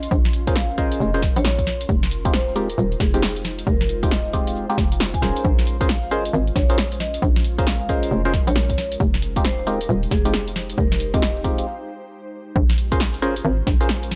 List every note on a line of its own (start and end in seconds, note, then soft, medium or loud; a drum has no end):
0.00 1.86 C#4 medium
0.00 1.86 F4 medium
0.00 1.85 C6 medium
0.00 closed hi-hat medium
0.00 shaker soft
0.11 0.49 A#1 loud
0.11 1.87 A#4 medium
0.11 kick loud
0.11 shaker medium
0.25 snare medium
0.25 shaker soft
0.33 open hi-hat loud
0.33 shaker medium
0.47 0.96 G#1 loud
0.47 0.55 C#4 medium
0.47 0.55 F4 medium
0.47 0.55 G#4 medium
0.47 0.55 A#4 medium
0.47 0.55 C5 loud
0.47 kick loud
0.47 closed hi-hat medium
0.47 shaker soft
0.55 0.65 F5 medium
0.55 snare loud
0.55 shaker medium
0.70 0.75 F5 medium
0.70 shaker soft
0.78 1.11 C#4 medium
0.78 1.11 F4 medium
0.78 1.11 G#4 medium
0.78 1.11 A#4 medium
0.78 1.11 C5 medium
0.78 1.22 D#5 medium
0.78 kick medium
0.78 open hi-hat medium
0.78 shaker medium
0.92 closed hi-hat medium
0.92 shaker soft
1.00 1.30 F1 medium
1.00 shaker medium
1.14 1.22 C#4 medium
1.14 1.22 F4 medium
1.14 1.22 G#4 medium
1.14 1.22 A#4 medium
1.14 1.22 C5 medium
1.14 closed hi-hat soft
1.22 kick loud
1.22 snare medium
1.22 open hi-hat loud
1.22 shaker medium
1.36 1.85 A#1 loud
1.36 1.81 C#5 medium
1.36 closed hi-hat medium
1.36 shaker soft
1.45 snare loud
1.45 shaker medium
1.58 kick medium
1.58 closed hi-hat medium
1.66 snare medium
1.66 open hi-hat medium
1.66 shaker loud
1.81 closed hi-hat medium
1.81 shaker soft
1.89 2.27 F1 medium
1.89 12.52 G#3 medium
1.89 5.41 D#4 medium
1.89 5.41 F4 medium
1.89 7.19 C5 medium
1.89 kick loud
1.89 shaker medium
2.03 snare medium
2.03 shaker soft
2.11 open hi-hat loud
2.11 shaker loud
2.25 2.74 D#1 loud
2.25 2.33 G#3 medium
2.25 2.33 C4 medium
2.25 2.33 D#4 medium
2.25 2.33 F4 medium
2.25 2.33 G4 medium
2.25 kick loud
2.25 closed hi-hat medium
2.25 shaker soft
2.33 2.52 C5 medium
2.33 snare loud
2.33 shaker medium
2.48 shaker soft
2.55 2.68 G#3 medium
2.55 2.68 C4 medium
2.55 2.68 D#4 medium
2.55 2.68 F4 medium
2.55 2.68 G4 medium
2.55 2.65 A#4 medium
2.55 open hi-hat medium
2.55 shaker loud
2.70 2.75 A#4 medium
2.70 closed hi-hat medium
2.70 shaker soft
2.78 2.96 D#1 loud
2.78 shaker medium
2.92 closed hi-hat soft
3.00 3.63 F1 medium
3.00 3.09 G#4 medium
3.00 kick loud
3.00 snare medium
3.00 open hi-hat loud
3.00 shaker loud
3.14 3.22 G#3 medium
3.14 3.22 C4 medium
3.14 3.22 D#4 medium
3.14 3.22 F4 medium
3.14 3.22 G4 loud
3.14 closed hi-hat medium
3.14 shaker soft
3.22 snare loud
3.22 shaker medium
3.36 closed hi-hat soft
3.44 snare medium
3.44 open hi-hat medium
3.44 shaker loud
3.58 closed hi-hat medium
3.58 shaker soft
3.66 4.04 F1 loud
3.66 3.76 A#4 medium
3.66 kick loud
3.66 shaker soft
3.81 3.86 A#4 medium
3.81 snare medium
3.81 shaker soft
3.89 open hi-hat loud
3.89 shaker medium
4.03 4.57 D#1 loud
4.03 4.11 G#3 medium
4.03 4.11 C4 medium
4.03 4.11 D#4 medium
4.03 4.11 F4 medium
4.03 4.11 G4 loud
4.03 4.08 D#5 medium
4.03 kick loud
4.03 closed hi-hat medium
4.03 shaker soft
4.11 4.20 D#5 medium
4.11 snare loud
4.11 shaker medium
4.25 shaker soft
4.33 4.66 G#3 medium
4.33 4.66 C4 medium
4.33 4.66 D#4 medium
4.33 4.66 F4 medium
4.33 4.66 G4 medium
4.33 kick medium
4.33 open hi-hat medium
4.33 shaker loud
4.47 4.62 F5 medium
4.47 closed hi-hat medium
4.47 shaker soft
4.56 4.66 F1 medium
4.56 shaker medium
4.70 4.77 G#3 medium
4.70 4.77 C4 medium
4.70 4.77 D#4 medium
4.70 4.77 F4 medium
4.70 4.77 G4 medium
4.70 closed hi-hat soft
4.70 shaker soft
4.78 5.19 F1 medium
4.78 kick loud
4.78 snare medium
4.78 open hi-hat loud
4.78 shaker medium
4.92 closed hi-hat medium
4.92 shaker soft
5.00 snare loud
5.00 shaker soft
5.14 5.45 G#5 medium
5.14 kick medium
5.14 closed hi-hat soft
5.22 5.32 D#1 medium
5.22 5.77 C#4 medium
5.22 5.77 F4 medium
5.22 5.77 G#4 medium
5.22 5.77 A#4 medium
5.22 5.77 C5 medium
5.22 snare medium
5.22 open hi-hat medium
5.22 shaker medium
5.36 closed hi-hat medium
5.36 shaker soft
5.44 5.82 A#1 loud
5.44 8.97 C#4 medium
5.44 8.96 F4 medium
5.44 kick loud
5.44 shaker medium
5.59 snare medium
5.59 shaker soft
5.67 open hi-hat loud
5.67 shaker loud
5.81 6.30 G#1 medium
5.81 5.88 C#4 medium
5.81 5.88 F4 medium
5.81 5.88 G#4 medium
5.81 5.88 A#4 medium
5.81 5.88 C5 medium
5.81 kick loud
5.81 closed hi-hat medium
5.81 shaker soft
5.89 6.07 F5 medium
5.89 snare loud
5.89 shaker medium
6.03 shaker soft
6.11 6.24 C#4 medium
6.11 6.24 F4 medium
6.11 6.24 G#4 medium
6.11 6.24 A#4 medium
6.11 6.24 C5 loud
6.11 6.20 D#5 medium
6.11 open hi-hat medium
6.11 shaker medium
6.25 6.31 D#5 medium
6.25 closed hi-hat medium
6.25 shaker soft
6.33 6.51 G#1 loud
6.33 shaker medium
6.47 closed hi-hat soft
6.56 7.19 A#1 medium
6.56 6.65 C#5 medium
6.56 kick loud
6.56 snare medium
6.56 open hi-hat loud
6.56 shaker medium
6.69 6.77 C#4 medium
6.69 6.77 F4 medium
6.69 6.77 G#4 medium
6.69 6.77 A#4 medium
6.69 6.77 C5 loud
6.69 6.75 C#5 medium
6.69 closed hi-hat medium
6.69 shaker soft
6.78 snare loud
6.78 shaker medium
6.92 closed hi-hat medium
7.00 7.18 D#5 medium
7.00 snare medium
7.00 open hi-hat medium
7.00 shaker medium
7.14 closed hi-hat medium
7.14 shaker soft
7.22 7.60 A#1 loud
7.22 8.98 A#4 medium
7.22 kick loud
7.22 shaker soft
7.36 snare medium
7.36 shaker soft
7.45 open hi-hat loud
7.45 shaker medium
7.58 8.08 G#1 loud
7.58 7.66 C#4 medium
7.58 7.66 F4 medium
7.58 7.66 G#4 medium
7.58 7.66 A#4 medium
7.58 7.66 C5 loud
7.58 kick loud
7.58 closed hi-hat medium
7.58 shaker soft
7.67 7.76 F5 medium
7.67 snare loud
7.67 shaker medium
7.81 7.86 F5 medium
7.81 shaker soft
7.89 8.22 C#4 medium
7.89 8.22 F4 medium
7.89 8.22 G#4 medium
7.89 8.22 A#4 medium
7.89 8.22 C5 medium
7.89 8.33 D#5 medium
7.89 kick medium
7.89 open hi-hat medium
7.89 shaker medium
8.03 closed hi-hat medium
8.03 shaker soft
8.11 8.41 F1 medium
8.11 shaker soft
8.25 8.33 C#4 medium
8.25 8.33 F4 medium
8.25 8.33 G#4 medium
8.25 8.33 A#4 medium
8.25 8.33 C5 medium
8.25 closed hi-hat soft
8.33 kick loud
8.33 snare medium
8.33 open hi-hat loud
8.33 shaker medium
8.47 8.96 A#1 loud
8.47 8.92 C#5 medium
8.47 closed hi-hat medium
8.47 shaker soft
8.56 snare loud
8.56 shaker medium
8.70 kick medium
8.70 closed hi-hat medium
8.78 snare medium
8.78 open hi-hat medium
8.78 shaker medium
8.92 closed hi-hat medium
8.92 shaker soft
9.00 9.38 F1 loud
9.00 12.52 D#4 medium
9.00 12.52 G4 medium
9.00 12.52 C5 loud
9.00 kick loud
9.00 shaker soft
9.14 snare medium
9.14 shaker soft
9.22 open hi-hat loud
9.22 shaker medium
9.36 9.85 D#1 loud
9.36 9.44 G#3 medium
9.36 9.44 C4 medium
9.36 9.44 D#4 medium
9.36 9.44 F4 medium
9.36 9.44 G4 medium
9.36 kick loud
9.36 closed hi-hat medium
9.36 shaker soft
9.45 9.63 C5 medium
9.45 snare loud
9.45 shaker medium
9.59 shaker soft
9.66 9.79 G#3 medium
9.66 9.79 C4 medium
9.66 9.79 D#4 medium
9.66 9.79 F4 medium
9.66 9.79 G4 loud
9.66 9.76 A#4 medium
9.66 open hi-hat medium
9.66 shaker medium
9.81 9.86 A#4 medium
9.81 closed hi-hat medium
9.81 shaker soft
9.89 10.07 D#1 loud
9.89 shaker soft
10.03 closed hi-hat soft
10.11 10.74 F1 medium
10.11 10.20 G#4 medium
10.11 kick loud
10.11 snare medium
10.11 open hi-hat loud
10.11 shaker medium
10.25 10.33 G#3 medium
10.25 10.33 C4 medium
10.25 10.33 D#4 medium
10.25 10.33 F4 medium
10.25 10.33 G4 loud
10.25 10.31 G#4 medium
10.25 closed hi-hat medium
10.25 shaker soft
10.33 snare loud
10.33 shaker soft
10.47 closed hi-hat medium
10.56 snare medium
10.56 open hi-hat medium
10.56 shaker medium
10.70 closed hi-hat medium
10.70 shaker soft
10.77 11.15 F1 loud
10.77 10.87 A#4 medium
10.77 kick loud
10.77 shaker medium
10.92 10.97 A#4 medium
10.92 snare medium
10.92 shaker soft
11.00 open hi-hat loud
11.00 shaker medium
11.14 11.63 D#1 medium
11.14 11.22 G#3 medium
11.14 11.22 C4 medium
11.14 11.22 D#4 medium
11.14 11.22 F4 medium
11.14 11.22 G4 loud
11.14 11.19 D#5 medium
11.14 kick loud
11.14 closed hi-hat medium
11.14 shaker soft
11.22 11.31 D#5 medium
11.22 snare loud
11.22 shaker medium
11.36 shaker soft
11.44 11.67 G#3 medium
11.44 11.67 C4 medium
11.44 11.67 D#4 medium
11.44 11.67 F4 medium
11.44 11.67 G4 medium
11.44 kick medium
11.44 open hi-hat medium
11.44 shaker medium
11.58 11.67 F5 medium
11.58 closed hi-hat medium
11.58 shaker soft
12.55 12.93 A#1 loud
12.55 14.15 G#3 medium
12.55 14.15 C#4 medium
12.55 14.15 F4 medium
12.55 14.15 C5 loud
12.55 kick loud
12.70 snare medium
12.70 closed hi-hat medium
12.78 open hi-hat loud
12.92 13.41 G#1 loud
12.92 12.99 C#4 medium
12.92 12.99 F4 medium
12.92 12.99 G#4 medium
12.92 12.99 A#4 medium
12.92 12.99 C5 medium
12.92 kick loud
12.92 closed hi-hat medium
13.00 snare loud
13.14 closed hi-hat soft
13.22 13.35 C#4 medium
13.22 13.35 F4 medium
13.22 13.35 G#4 medium
13.22 13.35 A#4 medium
13.22 13.35 C5 medium
13.22 open hi-hat medium
13.36 closed hi-hat medium
13.45 13.62 G#1 loud
13.67 14.15 A#1 medium
13.67 kick loud
13.67 snare medium
13.67 open hi-hat loud
13.81 13.88 C#4 medium
13.81 13.88 F4 medium
13.81 13.88 G#4 medium
13.81 13.88 A#4 medium
13.81 13.88 C5 loud
13.81 closed hi-hat medium
13.89 snare loud
14.03 closed hi-hat medium
14.11 snare medium
14.11 open hi-hat loud